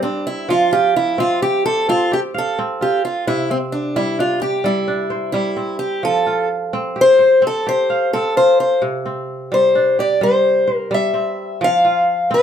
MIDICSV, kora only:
0, 0, Header, 1, 2, 480
1, 0, Start_track
1, 0, Key_signature, -1, "major"
1, 0, Tempo, 463679
1, 516, Time_signature, 12, 3, 24, 8
1, 12862, End_track
2, 0, Start_track
2, 0, Title_t, "Kora"
2, 0, Program_c, 0, 46
2, 0, Note_on_c, 0, 55, 84
2, 0, Note_on_c, 0, 62, 71
2, 0, Note_on_c, 0, 67, 70
2, 0, Note_on_c, 0, 72, 71
2, 32, Note_on_c, 0, 60, 66
2, 299, Note_off_c, 0, 67, 0
2, 504, Note_on_c, 0, 53, 83
2, 568, Note_off_c, 0, 55, 0
2, 750, Note_on_c, 0, 65, 66
2, 789, Note_off_c, 0, 72, 0
2, 1056, Note_off_c, 0, 62, 0
2, 1218, Note_off_c, 0, 60, 0
2, 1222, Note_on_c, 0, 60, 90
2, 1472, Note_on_c, 0, 67, 66
2, 1713, Note_on_c, 0, 72, 71
2, 1949, Note_off_c, 0, 60, 0
2, 1953, Note_on_c, 0, 60, 90
2, 2187, Note_off_c, 0, 67, 0
2, 2191, Note_on_c, 0, 67, 72
2, 2317, Note_off_c, 0, 65, 0
2, 2426, Note_on_c, 0, 77, 68
2, 2672, Note_off_c, 0, 60, 0
2, 2676, Note_on_c, 0, 60, 81
2, 2909, Note_on_c, 0, 65, 60
2, 2926, Note_off_c, 0, 53, 0
2, 2942, Note_off_c, 0, 72, 0
2, 3389, Note_on_c, 0, 48, 82
2, 3460, Note_off_c, 0, 77, 0
2, 3621, Note_off_c, 0, 60, 0
2, 3625, Note_on_c, 0, 60, 67
2, 3653, Note_off_c, 0, 67, 0
2, 4099, Note_on_c, 0, 55, 87
2, 4337, Note_on_c, 0, 62, 64
2, 4476, Note_off_c, 0, 65, 0
2, 4572, Note_on_c, 0, 67, 66
2, 4792, Note_off_c, 0, 55, 0
2, 4804, Note_on_c, 0, 55, 84
2, 5044, Note_off_c, 0, 62, 0
2, 5048, Note_on_c, 0, 62, 66
2, 5282, Note_on_c, 0, 72, 67
2, 5489, Note_off_c, 0, 60, 0
2, 5512, Note_off_c, 0, 55, 0
2, 5524, Note_on_c, 0, 55, 81
2, 5761, Note_on_c, 0, 60, 62
2, 5811, Note_off_c, 0, 48, 0
2, 6034, Note_off_c, 0, 67, 0
2, 6243, Note_on_c, 0, 53, 78
2, 6313, Note_off_c, 0, 55, 0
2, 6486, Note_on_c, 0, 65, 63
2, 6511, Note_off_c, 0, 72, 0
2, 6787, Note_off_c, 0, 62, 0
2, 6965, Note_off_c, 0, 60, 0
2, 6969, Note_on_c, 0, 60, 86
2, 7203, Note_on_c, 0, 67, 64
2, 7443, Note_on_c, 0, 72, 66
2, 7676, Note_off_c, 0, 60, 0
2, 7680, Note_on_c, 0, 60, 85
2, 7932, Note_off_c, 0, 67, 0
2, 7936, Note_on_c, 0, 67, 68
2, 8053, Note_off_c, 0, 65, 0
2, 8176, Note_on_c, 0, 77, 72
2, 8417, Note_off_c, 0, 60, 0
2, 8421, Note_on_c, 0, 60, 80
2, 8660, Note_on_c, 0, 65, 64
2, 8665, Note_off_c, 0, 53, 0
2, 8672, Note_off_c, 0, 72, 0
2, 9128, Note_on_c, 0, 48, 84
2, 9210, Note_off_c, 0, 77, 0
2, 9371, Note_off_c, 0, 60, 0
2, 9375, Note_on_c, 0, 60, 61
2, 9398, Note_off_c, 0, 67, 0
2, 9852, Note_on_c, 0, 55, 86
2, 10096, Note_on_c, 0, 62, 67
2, 10227, Note_off_c, 0, 65, 0
2, 10341, Note_on_c, 0, 67, 70
2, 10559, Note_off_c, 0, 55, 0
2, 10571, Note_on_c, 0, 55, 86
2, 11050, Note_on_c, 0, 72, 71
2, 11238, Note_off_c, 0, 60, 0
2, 11279, Note_off_c, 0, 55, 0
2, 11292, Note_on_c, 0, 55, 86
2, 11529, Note_on_c, 0, 60, 64
2, 11550, Note_off_c, 0, 48, 0
2, 11803, Note_off_c, 0, 67, 0
2, 11834, Note_off_c, 0, 62, 0
2, 12018, Note_on_c, 0, 53, 91
2, 12084, Note_off_c, 0, 55, 0
2, 12262, Note_on_c, 0, 65, 66
2, 12280, Note_off_c, 0, 72, 0
2, 12735, Note_off_c, 0, 60, 0
2, 12739, Note_on_c, 0, 60, 87
2, 12862, Note_off_c, 0, 53, 0
2, 12862, Note_off_c, 0, 60, 0
2, 12862, Note_off_c, 0, 65, 0
2, 12862, End_track
0, 0, End_of_file